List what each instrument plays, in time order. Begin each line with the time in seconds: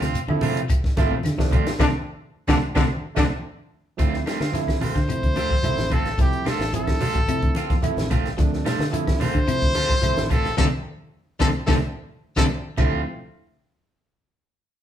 0.01 fingered electric bass D2, clean electric guitar C3 C4 F4, snare, closed hi-hat
0.14 closed hi-hat, high conga, shekere
0.28 fingered electric bass D3, clean electric guitar D3, tine electric piano F3 A3 C4 E4, high conga, claves
0.41 clean electric guitar C3 A3 C4 F4, open hi-hat, high conga, low conga, shekere
0.56 fingered electric bass C3, closed hi-hat
0.69 muted clean electric guitar stroke, kick, closed hi-hat, high conga, claves, shekere
0.84 kick, snare
0.97 fingered electric bass A1, clean electric guitar D3 A3 C4 F4, tine electric piano F3 A3 C4 E4, kick, snare, closed hi-hat, high conga, shekere
1.11 clean electric guitar B2, muted fingered electric bass stroke
1.23 fingered electric bass D3, snare, closed hi-hat, high conga, claves, shekere
1.38 clean electric guitar C3, tine electric piano F3 A3 C4 D4, kick, snare, high conga
1.51 fingered electric bass D2, clean electric guitar F3 A3 C4 F4, kick, closed hi-hat, low conga, claves, shekere
1.66 muted fingered electric bass stroke, snare, closed hi-hat
1.79 fingered electric bass D2, clean electric guitar C3 D3 F3 A3 C4 D4, baritone saxophone D3, tenor saxophone D3, tine electric piano A3 C4 D4, trombone D4, kick, snare, high conga, claves, shekere
2.48 fingered electric bass D2, clean electric guitar C3 D3 F3 A3 C4 D4, baritone saxophone D3, tenor saxophone D3, tine electric piano A3 C4 D4, trombone D4, kick, snare, high conga, claves, shekere
2.75 fingered electric bass D2, clean electric guitar C3 D3 F3 A3 C4 D4, baritone saxophone D3, tenor saxophone D3, tine electric piano A3 C4 D4, trombone D4, kick, snare, high conga, claves, shekere
3.15 fingered electric bass D2, clean electric guitar C3 D3 F3 A3 C4 D4, baritone saxophone D3, tenor saxophone D3, tine electric piano A3 C4 D4, trombone D4, kick, snare, high conga, claves, shekere
3.97 fingered electric bass D2, tine electric piano F3 A3 C4 E4, clean electric guitar F3 A3 C4 F4, kick, snare, closed hi-hat, shekere
4.14 snare
4.26 clean electric guitar G3 A3 C4 F4, snare, closed hi-hat, claves, shekere
4.39 fingered electric bass D3, clean electric guitar C4 F4, snare, closed hi-hat
4.52 tine electric piano F3 A3 C4 E4, clean electric guitar F3, snare, closed hi-hat, shekere
4.67 kick, snare, closed hi-hat, high conga, claves
4.81 clean electric guitar D3 A3 C4 F4, trumpet C5, muted fingered electric bass stroke, open hi-hat, high conga, low conga, shekere
4.95 clean electric guitar D3, fingered electric bass D3, kick, snare, closed hi-hat
5.07 clean electric guitar C3, tine electric piano F3 A3 C4 E4, closed hi-hat, claves, shekere
5.23 fingered electric bass D2, kick, closed hi-hat
5.36 clean electric guitar D3 A3 C4 F4, snare, closed hi-hat, high conga, shekere
5.50 clean electric guitar F3, kick
5.63 fingered electric bass C2, tine electric piano F3 A3 C4 E4, clean electric guitar F3, closed hi-hat, high conga, low conga, claves, shekere
5.77 fingered electric bass A1, snare, closed hi-hat, high conga
5.90 clean electric guitar D3 A3 C4 F4, trumpet A4, kick, closed hi-hat, low conga, claves, shekere
6.06 snare, closed hi-hat
6.17 fingered electric bass C2, tine electric piano F3 A3 C4 E4, clean electric guitar F3, trumpet G4, kick, snare, closed hi-hat, shekere
6.33 closed hi-hat
6.44 clean electric guitar G3 A3 C4 F4, muted fingered electric bass stroke, snare, closed hi-hat, low conga, claves, shekere
6.49 trumpet A4
6.59 fingered electric bass A1, snare, closed hi-hat
6.73 tine electric piano F3 A3 C4 E4, clean electric guitar F3, trumpet A4, closed hi-hat, shekere
6.87 kick, snare, closed hi-hat, high conga, claves
7.00 clean electric guitar D3 A3 C4 F4, open hi-hat, high conga, low conga, shekere
7.15 fingered electric bass A1, clean electric guitar D3, kick, closed hi-hat
7.28 clean electric guitar C3, tine electric piano F3 A3 C4 E4, closed hi-hat, claves, shekere
7.42 fingered electric bass D2, kick, closed hi-hat
7.55 clean electric guitar D3 C4 F4, muted fingered electric bass stroke, muted clean electric guitar stroke, snare, closed hi-hat, high conga, shekere
7.70 fingered electric bass F2, clean electric guitar F3, kick, snare, closed hi-hat
7.82 tine electric piano F3 A3 C4 E4, clean electric guitar F3, closed hi-hat, high conga, low conga, claves, shekere
7.97 fingered electric bass A1, snare, closed hi-hat, high conga
8.10 clean electric guitar D3 A3 C4 F4, kick, snare, closed hi-hat, low conga, claves, shekere
8.26 snare, closed hi-hat
8.38 fingered electric bass D2, tine electric piano F3 A3 C4 D4, clean electric guitar F3, kick, snare, closed hi-hat, shekere
8.53 snare
8.65 clean electric guitar G3 A3 F4, snare, closed hi-hat, low conga, claves, shekere
8.79 fingered electric bass D3, snare, closed hi-hat
8.91 tine electric piano F3 A3 C4 E4, clean electric guitar F3, closed hi-hat, shekere
9.07 kick, snare, closed hi-hat, high conga, claves
9.20 clean electric guitar D3 A3 C4 F4, trumpet C5, muted fingered electric bass stroke, snare, open hi-hat, high conga, low conga, shekere
9.34 clean electric guitar D3, fingered electric bass D3, kick, closed hi-hat
9.46 clean electric guitar C3, tine electric piano F3 A3 C4 E4, closed hi-hat, high conga, claves, shekere
9.62 fingered electric bass D2, kick, closed hi-hat
9.75 clean electric guitar D3 A3 C4 F4, closed hi-hat, high conga, shekere
9.89 clean electric guitar F3, kick, snare
10.01 fingered electric bass C2, tine electric piano F3 A3 C4 E4, clean electric guitar F3, closed hi-hat, high conga, claves, shekere
10.17 fingered electric bass A1, snare, closed hi-hat, high conga
10.30 clean electric guitar D3 A3 C4 F4, trumpet A4, kick, snare, closed hi-hat, low conga, claves, shekere
10.45 snare, closed hi-hat
10.57 fingered electric bass D2, clean electric guitar C3 D3 F3 A3 C4 D4, tine electric piano A3 C4 D4, trumpet A4, kick, snare, high conga, claves, shekere
11.39 fingered electric bass D2, clean electric guitar C3 D3 F3 A3 C4 D4, tine electric piano A3 C4 D4, trumpet A4, kick, snare, high conga, claves, shekere
11.66 fingered electric bass D2, clean electric guitar C3 D3 F3 A3 C4 D4, tine electric piano A3 C4 D4, trumpet A4, kick, snare, high conga, claves, shekere
12.36 fingered electric bass D2, clean electric guitar C3 D3 F3 A3 C4 D4, tine electric piano A3 C4 D4, trumpet A4, kick, snare, high conga, claves, shekere
12.77 fingered electric bass D2, clean electric guitar D3 A3 C4 F4, tine electric piano F3 A3 C4 E4, kick, ride bell, low conga, claves, shekere